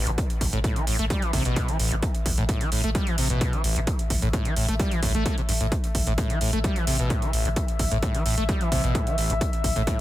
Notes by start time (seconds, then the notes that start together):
Already playing: E5
0.07 A1 A3, closed hi-hat
0.18 kick, closed hi-hat
0.30 closed hi-hat
0.41 A1, kick, open hi-hat
0.53 A1 A2, closed hi-hat
0.64 A2, kick, closed hi-hat
0.76 E3, closed hi-hat
0.87 A1 A2, open hi-hat
0.99 A1 A3, closed hi-hat
1.10 G3, kick, closed hi-hat
1.22 E3, closed hi-hat
1.33 A1 C3, kick, open hi-hat
1.45 A1 B2, closed hi-hat
1.56 kick, closed hi-hat
1.68 E3, closed hi-hat
1.79 A1, open hi-hat
1.91 A1 A3, closed hi-hat
2.03 kick, closed hi-hat
2.15 closed hi-hat
2.26 A1, kick, open hi-hat
2.38 A1 A2, closed hi-hat
2.49 A2, kick, closed hi-hat
2.61 E3, closed hi-hat
2.72 A1 A2, open hi-hat
2.84 A1 A3, closed hi-hat
2.95 G3, kick, closed hi-hat
3.07 E3, closed hi-hat
3.18 A1 C3, open hi-hat
3.30 A1 B2, closed hi-hat
3.41 kick, closed hi-hat
3.53 E3, closed hi-hat
3.64 A1, open hi-hat
3.76 A1 A3, closed hi-hat
3.87 kick, closed hi-hat
3.99 closed hi-hat
4.10 A1, kick, open hi-hat
4.22 A1 A2, closed hi-hat
4.33 A2, kick, closed hi-hat
4.45 E3, closed hi-hat
4.56 A1 A2, open hi-hat
4.68 A1 A3, closed hi-hat
4.79 G3, kick, closed hi-hat
4.91 E3, closed hi-hat
5.03 A1 A2, kick, open hi-hat
5.15 A1 A3, closed hi-hat
5.26 A3, kick, closed hi-hat
5.38 C3, closed hi-hat
5.49 A1 G2, open hi-hat
5.61 A1 A2, closed hi-hat
5.72 kick, closed hi-hat
5.84 closed hi-hat
5.95 A1, kick, open hi-hat
6.07 A1 A2, closed hi-hat
6.18 A2, kick, closed hi-hat
6.30 E3, closed hi-hat
6.41 A1 A2, open hi-hat
6.53 A1 A3, closed hi-hat
6.64 G3, kick, closed hi-hat
6.76 E3, closed hi-hat
6.87 A1 C3, open hi-hat
6.99 A1 B2, closed hi-hat
7.10 A2, kick, closed hi-hat
7.22 E3, closed hi-hat
7.33 A1, open hi-hat
7.45 A1 A3, closed hi-hat
7.56 kick, closed hi-hat
7.68 closed hi-hat
7.79 A1, kick, open hi-hat
7.91 A1 A2, closed hi-hat
8.03 A2, kick, closed hi-hat
8.15 E3, closed hi-hat
8.26 A1 A2, open hi-hat
8.38 A1 A3, closed hi-hat
8.49 G3, kick, closed hi-hat
8.61 E3, closed hi-hat
8.72 A1 C3, kick, open hi-hat
8.84 A1 B2, closed hi-hat
8.95 A2, kick, closed hi-hat
9.07 E3, closed hi-hat
9.18 A1, open hi-hat
9.30 A1 A3, closed hi-hat
9.41 kick, closed hi-hat
9.53 closed hi-hat
9.64 A1, kick, open hi-hat
9.76 A1 A2, closed hi-hat
9.87 A2, kick, closed hi-hat